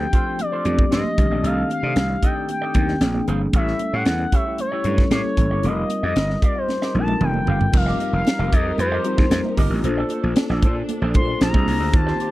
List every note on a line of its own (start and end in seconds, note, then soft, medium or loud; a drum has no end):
0.00 0.29 F3 medium
0.00 0.29 A3 medium
0.00 0.29 C4 medium
0.00 0.29 D4 medium
0.00 0.30 G4 medium
0.00 0.42 G5 loud
0.00 muted clean electric guitar stroke medium
0.13 0.27 F4 medium
0.13 0.26 A4 medium
0.13 0.25 C5 medium
0.13 kick medium
0.13 closed hi-hat medium
0.26 0.38 F4 soft
0.26 0.39 A4 soft
0.26 0.38 C5 medium
0.39 0.93 D5 medium
0.39 muted clean electric guitar stroke soft
0.39 closed hi-hat medium
0.39 muted conga soft
0.52 0.64 F4 medium
0.52 0.65 A4 medium
0.52 0.65 C5 medium
0.65 0.84 F2 medium
0.65 1.18 F3 medium
0.65 1.16 A3 medium
0.65 0.72 B3 soft
0.65 1.17 D4 medium
0.65 1.17 G4 medium
0.65 closed hi-hat medium
0.65 muted conga soft
0.65 low conga medium
0.72 1.17 C4 medium
0.78 muted clean electric guitar stroke soft
0.78 kick medium
0.91 1.01 G2 medium
0.91 1.07 F4 medium
0.91 1.06 A4 medium
0.91 1.05 C5 medium
0.91 1.47 D#5 medium
0.91 snare medium
0.91 closed hi-hat loud
0.91 high conga medium
1.05 muted clean electric guitar stroke soft
1.05 high conga medium
1.17 1.27 C2 medium
1.17 1.24 D3 medium
1.17 2.13 A3 medium
1.17 2.13 C4 medium
1.17 2.13 D4 medium
1.17 2.13 G4 medium
1.17 muted clean electric guitar stroke soft
1.17 kick loud
1.17 closed hi-hat medium
1.23 2.16 D#3 medium
1.31 1.40 A#1 medium
1.31 1.43 D#4 soft
1.31 1.44 A4 soft
1.31 1.44 D5 medium
1.43 1.62 C2 loud
1.43 1.68 D#4 medium
1.43 1.69 A4 medium
1.43 1.69 D#5 medium
1.43 1.71 F5 medium
1.43 closed hi-hat medium
1.43 muted conga soft
1.70 2.27 F5 loud
1.70 muted clean electric guitar stroke soft
1.70 closed hi-hat medium
1.70 muted conga soft
1.83 1.92 C3 medium
1.83 1.96 D#4 soft
1.83 1.97 A4 medium
1.83 1.96 D5 medium
1.96 2.15 C2 medium
1.96 snare loud
1.96 closed hi-hat medium
1.96 high conga medium
2.10 muted clean electric guitar stroke soft
2.23 2.37 D#4 medium
2.23 2.36 A4 medium
2.23 2.36 D#5 medium
2.23 2.50 G5 loud
2.23 kick medium
2.23 closed hi-hat medium
2.36 2.48 D#4 soft
2.36 2.49 A4 soft
2.36 2.48 D5 medium
2.49 3.25 G5 medium
2.49 closed hi-hat medium
2.49 muted conga soft
2.61 2.74 D#4 medium
2.61 2.75 A4 medium
2.61 2.76 D5 medium
2.74 2.94 D#2 medium
2.74 3.01 D#3 medium
2.74 3.01 A3 medium
2.74 3.00 C4 medium
2.74 3.00 D4 medium
2.74 3.02 G4 medium
2.74 muted clean electric guitar stroke soft
2.74 kick medium
2.74 closed hi-hat medium
2.74 muted conga soft
2.74 low conga medium
2.88 muted clean electric guitar stroke soft
2.88 snare soft
3.00 3.20 A#1 medium
3.00 3.49 F3 medium
3.00 3.49 A#3 medium
3.00 3.49 C4 medium
3.00 3.49 D4 medium
3.00 3.49 G#4 medium
3.00 muted clean electric guitar stroke soft
3.00 snare medium
3.00 closed hi-hat medium
3.00 high conga medium
3.14 muted clean electric guitar stroke soft
3.14 high conga medium
3.28 3.46 G1 medium
3.28 3.43 G#4 medium
3.28 3.41 C5 medium
3.28 3.41 F5 medium
3.28 closed hi-hat medium
3.28 high conga soft
3.41 muted clean electric guitar stroke soft
3.52 3.72 A1 medium
3.52 4.48 G3 medium
3.52 4.48 A3 medium
3.52 4.48 C#4 medium
3.52 4.49 E4 medium
3.52 3.78 E4 medium
3.52 3.79 G4 medium
3.52 3.79 C#5 medium
3.52 3.96 E5 loud
3.52 kick loud
3.52 closed hi-hat medium
3.52 muted conga soft
3.67 snare soft
3.79 muted clean electric guitar stroke soft
3.79 closed hi-hat medium
3.79 muted conga soft
3.93 4.03 A2 medium
3.93 4.06 E4 soft
3.93 4.06 G4 medium
3.93 4.06 C#5 medium
3.93 4.36 F#5 loud
4.06 4.25 E2 medium
4.06 muted clean electric guitar stroke soft
4.06 snare medium
4.06 closed hi-hat medium
4.06 high conga medium
4.20 muted clean electric guitar stroke medium
4.32 4.46 E4 medium
4.32 4.46 G4 medium
4.32 4.45 C#5 medium
4.32 4.60 E5 medium
4.32 kick medium
4.32 closed hi-hat medium
4.46 4.57 E4 soft
4.46 4.58 G4 medium
4.46 4.58 C#5 medium
4.58 5.09 C#5 medium
4.58 muted clean electric guitar stroke soft
4.58 closed hi-hat medium
4.58 muted conga soft
4.72 4.84 E4 medium
4.72 4.85 G4 medium
4.72 4.85 C#5 medium
4.84 5.03 G2 medium
4.84 5.09 G3 medium
4.84 5.11 A3 medium
4.84 5.11 C#4 medium
4.84 5.10 E4 medium
4.84 5.10 A4 medium
4.84 muted clean electric guitar stroke soft
4.84 closed hi-hat medium
4.84 low conga medium
4.98 muted clean electric guitar stroke soft
4.98 kick medium
4.98 snare soft
5.10 5.20 A2 medium
5.10 5.58 G3 medium
5.10 5.58 A#3 medium
5.10 5.18 C4 medium
5.10 5.59 E4 medium
5.10 5.27 G4 medium
5.10 5.59 A4 medium
5.10 5.25 A#4 medium
5.10 5.68 C#5 medium
5.10 5.24 C#5 medium
5.10 snare loud
5.10 closed hi-hat medium
5.10 high conga medium
5.17 5.62 C#4 medium
5.25 muted clean electric guitar stroke soft
5.25 high conga medium
5.37 5.50 A1 medium
5.37 muted clean electric guitar stroke soft
5.37 kick medium
5.37 closed hi-hat medium
5.37 high conga soft
5.50 5.60 G1 medium
5.50 5.63 G4 soft
5.50 5.64 A#4 soft
5.50 5.63 C#5 medium
5.63 5.82 F1 medium
5.63 6.59 G3 medium
5.63 6.59 C4 medium
5.63 6.59 D#4 medium
5.63 6.59 F4 medium
5.63 5.88 G4 medium
5.63 5.71 A4 medium
5.63 5.89 A#4 medium
5.63 6.05 D#5 loud
5.63 5.89 F5 medium
5.63 closed hi-hat medium
5.63 muted conga soft
5.71 6.62 A#4 medium
5.90 muted clean electric guitar stroke soft
5.90 closed hi-hat medium
5.90 muted conga soft
6.03 6.12 F2 medium
6.03 6.15 G4 medium
6.03 6.16 A#4 medium
6.03 6.16 D#5 medium
6.03 6.41 D#5 loud
6.16 6.35 G1 medium
6.16 snare loud
6.16 closed hi-hat medium
6.16 high conga medium
6.30 muted clean electric guitar stroke soft
6.30 snare soft
6.42 6.57 G4 medium
6.42 6.56 A#4 medium
6.42 6.59 D5 medium
6.42 6.56 F5 medium
6.42 kick medium
6.42 closed hi-hat medium
6.56 6.68 G4 soft
6.56 6.69 A#4 medium
6.56 6.96 C5 medium
6.56 6.68 D#5 medium
6.68 muted clean electric guitar stroke soft
6.68 snare soft
6.68 muted conga soft
6.82 6.94 G4 medium
6.82 6.95 A#4 medium
6.82 6.95 D#5 medium
6.82 snare medium
6.94 7.13 A#1 medium
6.94 7.66 G3 medium
6.94 7.66 C4 medium
6.94 7.66 D#4 medium
6.94 7.66 F4 medium
6.94 7.02 A4 medium
6.94 muted clean electric guitar stroke soft
6.94 low conga medium
6.99 7.70 A#4 medium
6.99 7.25 A5 loud
7.08 muted clean electric guitar stroke soft
7.08 high tom medium
7.21 7.39 F1 medium
7.21 7.78 G5 loud
7.21 muted clean electric guitar stroke soft
7.21 mid tom medium
7.21 high conga medium
7.34 muted clean electric guitar stroke soft
7.34 high conga medium
7.46 7.66 G1 medium
7.46 7.64 G4 medium
7.46 7.61 A#4 medium
7.46 7.60 F5 medium
7.46 floor tom medium
7.46 high conga soft
7.61 muted clean electric guitar stroke soft
7.61 floor tom medium
7.72 7.92 F1 medium
7.72 9.81 F3 medium
7.72 8.68 G3 medium
7.72 8.69 C4 medium
7.72 9.81 D#4 medium
7.72 8.69 D#4 medium
7.72 8.69 F4 medium
7.72 9.81 G4 medium
7.72 9.81 A#4 medium
7.72 8.69 A#4 medium
7.72 8.14 F5 loud
7.72 muted clean electric guitar stroke soft
7.72 kick loud
7.72 crash loud
7.72 muted conga soft
7.86 7.98 G4 medium
7.86 7.99 A#4 medium
7.86 8.00 D#5 medium
7.86 snare soft
7.98 8.12 G4 medium
7.98 8.12 A#4 medium
7.98 8.11 D#5 medium
7.98 closed hi-hat medium
7.98 muted conga soft
8.13 8.22 F1 medium
8.13 8.55 F5 loud
8.13 muted clean electric guitar stroke soft
8.25 muted clean electric guitar stroke soft
8.25 snare medium
8.25 closed hi-hat medium
8.25 high conga medium
8.39 8.48 F1 loud
8.39 8.51 G4 medium
8.39 8.52 A#4 medium
8.39 8.51 D#5 medium
8.52 8.71 F2 medium
8.52 8.68 G4 medium
8.52 8.66 A#4 medium
8.52 8.64 D#5 medium
8.52 8.79 D#5 medium
8.52 kick medium
8.52 closed hi-hat medium
8.65 muted clean electric guitar stroke soft
8.78 8.97 F2 loud
8.78 9.54 C5 medium
8.78 muted clean electric guitar stroke soft
8.78 closed hi-hat medium
8.78 muted conga soft
8.92 9.04 G4 medium
8.92 9.05 A#4 medium
8.92 9.06 D#5 medium
9.04 9.76 G3 medium
9.04 9.76 C4 medium
9.04 9.77 D#4 medium
9.04 9.77 F4 medium
9.04 9.77 A#4 medium
9.04 muted clean electric guitar stroke soft
9.04 closed hi-hat medium
9.18 9.28 D#2 medium
9.18 muted clean electric guitar stroke soft
9.18 kick medium
9.18 snare soft
9.30 9.40 F2 medium
9.30 muted clean electric guitar stroke soft
9.30 snare medium
9.30 closed hi-hat loud
9.30 high conga medium
9.44 muted clean electric guitar stroke soft
9.44 high conga medium
9.57 9.67 G1 medium
9.57 9.72 G4 medium
9.57 9.71 A#4 medium
9.57 9.70 D#5 medium
9.57 kick medium
9.57 open hi-hat medium
9.70 9.79 A1 medium
9.70 9.84 G4 medium
9.70 9.84 A#4 medium
9.70 9.83 D#5 medium
9.84 10.02 A#1 medium
9.84 10.79 A#3 medium
9.84 11.92 A#3 medium
9.84 10.79 D4 medium
9.84 11.92 D4 medium
9.84 10.79 F4 medium
9.84 10.79 A4 medium
9.84 11.40 A4 medium
9.84 10.79 C5 medium
9.84 muted clean electric guitar stroke soft
9.84 closed hi-hat medium
9.84 muted conga soft
9.97 10.10 D4 medium
9.97 10.11 A4 medium
9.97 10.12 D5 medium
10.09 10.23 D4 medium
10.09 10.23 A4 medium
10.09 10.23 C5 medium
10.09 closed hi-hat medium
10.09 muted conga soft
10.23 10.33 A#1 medium
10.23 muted clean electric guitar stroke soft
10.36 muted clean electric guitar stroke soft
10.36 snare loud
10.36 closed hi-hat medium
10.36 high conga medium
10.50 10.64 A#1 loud
10.50 10.62 D4 medium
10.50 10.62 A4 medium
10.50 10.62 D5 medium
10.50 snare soft
10.62 10.81 A#2 loud
10.62 10.78 D4 medium
10.62 10.76 A4 medium
10.62 10.75 C5 medium
10.62 kick medium
10.62 closed hi-hat medium
10.76 muted clean electric guitar stroke soft
10.89 muted clean electric guitar stroke soft
10.89 closed hi-hat medium
10.89 muted conga soft
11.02 11.16 A#1 medium
11.02 11.14 D4 medium
11.02 11.15 A4 medium
11.02 11.15 C5 medium
11.14 11.33 A#2 medium
11.14 11.39 A#3 medium
11.14 11.39 D4 medium
11.14 11.40 F4 medium
11.14 11.41 A4 medium
11.14 11.40 C5 medium
11.14 11.40 C6 loud
11.14 muted clean electric guitar stroke soft
11.14 kick medium
11.14 closed hi-hat medium
11.14 muted conga soft
11.14 low conga medium
11.28 muted clean electric guitar stroke soft
11.40 11.50 A#1 medium
11.40 11.93 G#3 medium
11.40 11.88 A#3 medium
11.40 11.88 D4 medium
11.40 11.88 F4 medium
11.40 11.89 G#4 medium
11.40 11.89 C5 medium
11.40 11.96 A#5 loud
11.40 muted clean electric guitar stroke soft
11.40 snare medium
11.40 closed hi-hat loud
11.40 high conga medium
11.54 11.63 C2 medium
11.54 11.66 D4 medium
11.54 11.67 G#4 medium
11.54 11.68 C5 medium
11.54 kick medium
11.54 high conga medium
11.67 11.80 C2 medium
11.67 muted clean electric guitar stroke soft
11.67 open hi-hat medium
11.80 11.89 D2 medium
11.80 muted clean electric guitar stroke soft
11.93 12.12 D#2 loud
11.93 12.31 D#3 medium
11.93 12.31 A#3 medium
11.93 12.31 C4 medium
11.93 12.31 D#4 medium
11.93 12.31 F4 medium
11.93 12.00 F#4 soft
11.93 12.31 G4 medium
11.93 12.31 C5 medium
11.93 12.31 A5 loud
11.93 muted clean electric guitar stroke soft
11.93 kick loud
11.93 closed hi-hat medium
11.93 muted conga soft
12.00 12.31 G4 medium
12.06 12.19 F4 medium
12.06 12.20 G4 medium
12.06 12.21 C5 medium
12.06 snare soft
12.18 12.31 F4 medium
12.18 12.31 G4 medium
12.18 12.31 C5 medium
12.18 closed hi-hat medium
12.18 muted conga soft